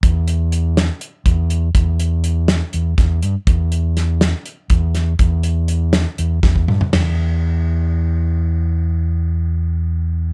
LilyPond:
<<
  \new Staff \with { instrumentName = "Fingered electric bass" } { \clef bass \time 7/8 \key e \minor \tempo 4 = 122 e,2 r8 e,4 | e,2 e,8 e,8 g,16 r16 | e,2 r8 e,4 | e,2 e,8 e,8 g,16 r16 |
e,2.~ e,8~ | e,2.~ e,8 | }
  \new DrumStaff \with { instrumentName = "Drums" } \drummode { \time 7/8 <hh bd>8 hh8 hh8 <hh sn>8 hh8 <hh bd>8 hh8 | <hh bd>8 hh8 hh8 <hh sn>8 hh8 <hh bd sn>8 hh8 | <hh bd>8 hh8 <hh sn>8 <hh sn>8 hh8 <hh bd>8 <hh sn>8 | <hh bd>8 hh8 hh8 <hh sn>8 hh8 <bd sn>16 bd16 toml16 tomfh16 |
<rb sn tomfh>4. r4 r4 | r4. r4 r4 | }
>>